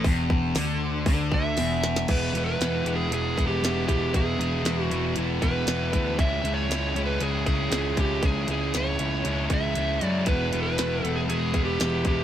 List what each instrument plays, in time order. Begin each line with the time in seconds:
0.04 picked electric bass E1, overdriven electric guitar E2, kick, open hi-hat
0.30 kick
0.55 picked electric bass D2, overdriven electric guitar D3, snare, open hi-hat
1.06 picked electric bass D2, overdriven electric guitar D3, kick, open hi-hat
1.32 electric slide guitar E5, kick
1.57 picked electric bass E1, overdriven electric guitar E2, snare, open hi-hat
1.84 snare
1.96 snare
2.08 picked electric bass E1, overdriven electric guitar E3 G#3 B3 E4, electric slide guitar B4, kick, closed hi-hat, crash
2.33 picked electric bass E1, overdriven electric guitar E3 G#3 B3 E4, closed hi-hat
2.46 electric slide guitar B4
2.59 picked electric bass E1, overdriven electric guitar E3 G#3 B3 E4, snare, closed hi-hat
2.84 picked electric bass E1, overdriven electric guitar E3 G#3 B3 E4, closed hi-hat
2.96 electric slide guitar G#4
3.10 picked electric bass E1, overdriven electric guitar E3 G#3 B3, closed hi-hat
3.14 overdriven electric guitar E4, electric slide guitar G#4
3.37 picked electric bass E1, overdriven electric guitar E3 G#3 B3 E4, kick, closed hi-hat
3.47 electric slide guitar G4
3.62 picked electric bass E1, overdriven electric guitar E3 G#3 B3 E4, snare, closed hi-hat
3.88 picked electric bass E1, overdriven electric guitar E3 G#3 B3 E4, electric slide guitar G4, kick, closed hi-hat
4.13 picked electric bass E1, overdriven electric guitar E3 G#3 B3 E4, electric slide guitar G#4, kick, closed hi-hat
4.38 picked electric bass E1, overdriven electric guitar E3 G#3 B3 E4, closed hi-hat
4.64 picked electric bass E1, overdriven electric guitar E3 G#3 B3 E4, snare, closed hi-hat
4.84 electric slide guitar F#4
4.90 picked electric bass E1, overdriven electric guitar E3 G#3 B3 E4, closed hi-hat
5.15 picked electric bass E1, overdriven electric guitar E3 G#3 B3 E4, closed hi-hat
5.42 picked electric bass E1, overdriven electric guitar E3 G#3 B3 E4, electric slide guitar B4, kick, closed hi-hat
5.67 picked electric bass E1, overdriven electric guitar E3 G#3 B3 E4, snare, closed hi-hat
5.93 picked electric bass D2, overdriven electric guitar E3 G#3 B3 E4, kick, closed hi-hat
6.19 picked electric bass C#2, overdriven electric guitar C#3 G#3 C#4 E4, electric slide guitar E5, kick, closed hi-hat
6.43 picked electric bass C#2, overdriven electric guitar C#3 G#3 C#4 E4, closed hi-hat
6.54 electric slide guitar C#5
6.69 picked electric bass C#2, overdriven electric guitar C#3 G#3 C#4 E4, snare, closed hi-hat
6.95 picked electric bass C#2, overdriven electric guitar C#3 G#3 C#4 E4, closed hi-hat
7.06 electric slide guitar B4
7.20 picked electric bass C#2, overdriven electric guitar C#3 G#3 C#4 E4, electric slide guitar G#4, closed hi-hat
7.46 picked electric bass C#2, overdriven electric guitar C#3 G#3 C#4 E4, electric slide guitar G#4, kick, closed hi-hat
7.71 picked electric bass C#2, overdriven electric guitar C#3 G#3 C#4 E4, snare, closed hi-hat
7.96 picked electric bass C#2, overdriven electric guitar C#3 G#3 C#4 E4, kick, closed hi-hat
8.00 electric slide guitar G4
8.22 picked electric bass C#2, overdriven electric guitar C#3 G#3 C#4 E4, electric slide guitar G#4, kick, closed hi-hat
8.48 picked electric bass C#2, overdriven electric guitar C#3 G#3 C#4 E4, electric slide guitar G#4, closed hi-hat
8.74 picked electric bass C#2, overdriven electric guitar C#3 G#3 C#4 E4, electric slide guitar C#5, snare, closed hi-hat
8.99 picked electric bass C#2, overdriven electric guitar C#3 G#3 C#4 E4, closed hi-hat
9.25 picked electric bass C#2, overdriven electric guitar C#3 G#3 C#4 E4, closed hi-hat
9.50 picked electric bass C#2, overdriven electric guitar C#3 G#3 C#4 E4, electric slide guitar E5, kick, closed hi-hat
9.75 picked electric bass C#2, overdriven electric guitar C#3 G#3 C#4 E4, closed hi-hat
10.01 picked electric bass F#2, overdriven electric guitar C#3 G#3 C#4 E4, closed hi-hat
10.06 electric slide guitar D5
10.26 picked electric bass E1, overdriven electric guitar E3 G#3 B3 E4, electric slide guitar B4, kick, closed hi-hat
10.52 picked electric bass E1, overdriven electric guitar E3 G#3 B3 E4, closed hi-hat
10.63 electric slide guitar B4
10.77 picked electric bass E1, overdriven electric guitar E3 G#3 B3 E4, snare, closed hi-hat
11.03 picked electric bass E1, overdriven electric guitar E3 G#3 B3 E4, closed hi-hat
11.16 electric slide guitar G#4
11.28 picked electric bass E1, overdriven electric guitar E3 G#3 B3 E4, electric slide guitar G#4, closed hi-hat
11.53 picked electric bass E1, overdriven electric guitar E3 G#3 B3 E4, kick, closed hi-hat
11.65 electric slide guitar G4
11.79 picked electric bass E1, overdriven electric guitar E3 G#3 B3 E4, snare, closed hi-hat
12.05 picked electric bass E1, overdriven electric guitar E3 G#3 B3 E4, electric slide guitar G4, kick, closed hi-hat